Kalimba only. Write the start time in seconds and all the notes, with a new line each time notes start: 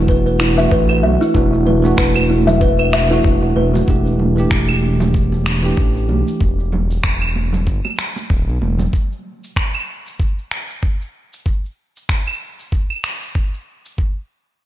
0.09 B4
0.26 B4
0.40 E4
0.58 E5
0.72 B4
0.89 B4
1.03 E5
1.21 E4
1.34 E4
1.53 F#4
1.66 B4
1.84 F#4
1.98 B4
2.15 B4
2.29 E4
2.47 E5
2.61 B4
2.79 B4
2.93 E5
3.11 E4
3.42 F#4
3.56 B4
3.74 F#4